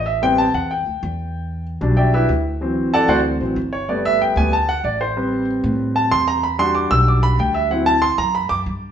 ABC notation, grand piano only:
X:1
M:4/4
L:1/8
Q:1/4=188
K:Em
V:1 name="Grand piano"
e g a f g4- | g2 z2 [Gdeg] [EGBe] z2 | z2 [Adfa] [Fcdf] z3 ^c | d e g _a =a f d c- |
c2 z3 a c' _b | b c' d' e' d' b g e | f a c' _b =b d' z2 |]
V:2 name="Grand piano"
z [G,B,C] z6 | z3 [F,G,D]3 z2 | [E,F,C]4- [E,F,C] [E,F,C] z2 | [G,A,B,]3 [G,A,B,] z4 |
[G,CB]8 | z [G,DF]6- [G,DF] | [F,CE] z6 z |]